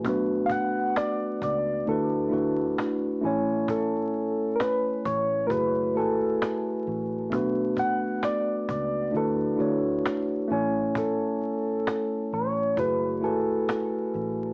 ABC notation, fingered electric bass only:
X:1
M:4/4
L:1/8
Q:"Swing 16ths" 1/4=66
K:Bdor
V:1 name="Fingered electric bass" clef=bass
B,,,2 z C,, D,, D,, z A,,,- | A,,,2 z A,,, F,,, G,,, z A,,, | B,,,2 z C,, D,, D,, z A,,,- | A,,,2 z A,,, F,,, G,,, z A,,, |]